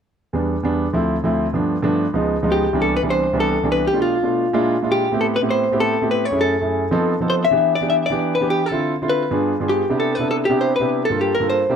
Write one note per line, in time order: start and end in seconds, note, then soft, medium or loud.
0.33 0.55 E2 medium
0.33 0.55 G3 medium
0.33 0.55 B3 medium
0.33 0.55 D4 medium
0.63 0.85 E2 medium
0.63 0.85 G3 medium
0.63 0.85 B3 medium
0.63 0.85 D4 medium
0.93 1.15 D2 medium
0.93 1.15 F3 medium
0.93 1.15 A3 medium
0.93 1.15 C4 medium
0.93 1.15 E4 medium
1.24 1.45 D2 medium
1.24 1.45 F3 medium
1.24 1.45 A3 medium
1.24 1.45 C4 medium
1.24 1.46 E4 medium
1.53 1.75 G2 medium
1.53 1.75 F3 medium
1.53 1.75 A3 medium
1.53 1.75 B3 medium
1.53 1.76 D4 medium
1.82 2.04 G2 medium
1.82 2.04 F3 medium
1.82 2.04 A3 medium
1.82 2.05 B3 medium
1.82 2.05 D4 medium
2.13 2.35 C#2 medium
2.13 2.35 F3 medium
2.13 2.35 G#3 medium
2.13 2.35 B3 medium
2.13 2.36 D#4 medium
2.42 2.64 C#2 medium
2.42 2.64 F3 medium
2.42 2.64 G#3 medium
2.42 2.65 B3 medium
2.42 2.65 D#4 medium
2.52 2.82 G4 medium
2.73 2.94 C2 medium
2.73 2.94 E3 medium
2.73 2.95 G3 medium
2.73 2.95 B3 medium
2.73 2.95 D4 medium
2.82 2.96 A4 medium
2.96 3.01 B4 medium
3.03 3.24 C2 medium
3.03 3.24 E3 medium
3.03 3.24 G3 medium
3.03 3.24 B3 medium
3.03 3.25 D4 medium
3.10 3.40 C5 medium
3.33 3.54 C2 medium
3.33 3.54 E3 medium
3.33 3.55 G3 medium
3.33 3.55 B3 medium
3.33 3.55 D4 medium
3.40 3.68 A4 medium
3.63 3.84 C2 medium
3.63 3.84 E3 medium
3.63 3.85 G3 medium
3.63 3.85 B3 medium
3.63 3.85 D4 medium
3.72 3.85 B4 medium
3.87 4.01 G4 medium
3.93 4.14 B2 medium
3.93 4.14 A3 medium
3.93 4.14 D4 medium
3.93 4.15 F4 medium
4.02 4.91 F4 medium
4.23 4.44 B2 medium
4.23 4.44 A3 medium
4.23 4.44 D4 medium
4.23 4.45 F4 medium
4.53 4.74 A#2 medium
4.53 4.74 G#3 medium
4.53 4.75 D4 medium
4.53 4.75 E4 medium
4.53 4.75 F4 loud
4.82 5.04 A#2 medium
4.82 5.04 G#3 medium
4.82 5.04 D4 medium
4.82 5.04 E4 medium
4.82 5.05 F4 medium
4.92 5.19 G4 medium
5.12 5.33 A2 medium
5.12 5.33 B3 medium
5.12 5.34 C4 medium
5.12 5.34 E4 medium
5.12 5.34 G4 medium
5.21 5.26 A4 medium
5.36 5.41 B4 medium
5.42 5.63 A2 medium
5.42 5.64 B3 medium
5.42 5.64 C4 medium
5.42 5.64 E4 medium
5.42 5.64 G4 medium
5.50 5.80 C5 medium
5.72 5.93 A2 medium
5.72 5.93 B3 medium
5.72 5.94 C4 medium
5.72 5.94 E4 medium
5.72 5.94 G4 medium
5.80 6.11 A4 medium
6.01 6.23 A2 medium
6.01 6.23 B3 medium
6.01 6.23 C4 medium
6.01 6.24 E4 medium
6.01 6.24 G4 medium
6.11 6.25 B4 medium
6.25 6.41 C#5 medium
6.31 6.53 F#2 medium
6.31 6.53 A3 medium
6.31 6.53 C#4 medium
6.31 6.53 E4 medium
6.31 6.53 G#4 medium
6.41 7.33 A4 medium
6.61 6.83 F#2 medium
6.61 6.83 A3 medium
6.61 6.83 C#4 medium
6.61 6.83 E4 medium
6.61 6.83 G#4 medium
6.91 7.13 F3 medium
6.91 7.13 B3 medium
6.91 7.13 C4 medium
6.91 7.13 D#4 medium
6.91 7.13 A4 loud
7.20 7.42 F3 medium
7.20 7.43 B3 medium
7.20 7.43 C4 medium
7.20 7.43 D#4 medium
7.20 7.43 A4 medium
7.30 7.35 C5 medium
7.45 7.75 E5 loud
7.51 7.72 E3 medium
7.51 7.73 B3 medium
7.51 7.73 D4 medium
7.51 7.73 G4 medium
7.75 7.89 D5 loud
7.81 8.02 E3 medium
7.81 8.02 B3 medium
7.81 8.03 D4 medium
7.81 8.03 G4 medium
7.90 7.95 E5 medium
8.06 8.36 D5 loud
8.10 8.32 E3 medium
8.10 8.32 B3 medium
8.10 8.32 D4 medium
8.10 8.33 G4 medium
8.35 8.49 B4 medium
8.41 8.62 E3 medium
8.41 8.62 B3 medium
8.41 8.62 D4 medium
8.41 8.63 G4 medium
8.50 8.66 G4 medium
8.66 8.95 A4 medium
8.71 8.92 D3 medium
8.71 8.92 C4 medium
8.71 8.93 E4 medium
8.71 8.93 F4 medium
9.02 9.22 D3 medium
9.02 9.23 C4 medium
9.02 9.23 E4 medium
9.02 9.23 F4 medium
9.09 9.65 B4 medium
9.31 9.52 G2 medium
9.31 9.52 B3 medium
9.31 9.52 D4 medium
9.31 9.52 F4 medium
9.31 9.53 G#4 medium
9.60 9.82 G2 medium
9.60 9.82 B3 medium
9.60 9.82 D4 medium
9.60 9.82 F4 medium
9.60 9.82 G#4 medium
9.69 9.97 G4 medium
9.89 10.11 C3 medium
9.89 10.11 B3 medium
9.89 10.11 D4 medium
9.89 10.12 E4 medium
9.89 10.12 G4 medium
10.00 10.15 A4 medium
10.15 10.41 C3 medium
10.15 10.29 B4 medium
10.19 10.41 B3 medium
10.19 10.41 D4 medium
10.19 10.41 E4 medium
10.19 10.41 A4 medium
10.31 10.36 A4 medium
10.45 10.58 G4 medium
10.49 10.71 C3 medium
10.49 10.71 B3 medium
10.49 10.71 D4 medium
10.49 10.71 E4 medium
10.49 10.72 G4 medium
10.61 10.75 C5 medium
10.76 11.01 B3 medium
10.76 11.05 B4 medium
10.80 11.01 C3 medium
10.80 11.01 D4 medium
10.80 11.02 E4 medium
10.80 11.02 G4 medium
11.05 11.19 A4 medium
11.10 11.31 G2 medium
11.10 11.31 A#3 medium
11.10 11.32 F4 medium
11.10 11.32 A4 medium
11.21 11.35 G4 medium
11.35 11.48 A#4 medium
11.40 11.61 G2 medium
11.40 11.61 A#3 medium
11.40 11.62 F4 medium
11.40 11.62 A4 medium
11.50 11.76 C5 medium
11.69 11.76 C3 medium
11.69 11.76 A#3 medium
11.69 11.76 D4 medium
11.69 11.76 E4 medium
11.69 11.76 G4 medium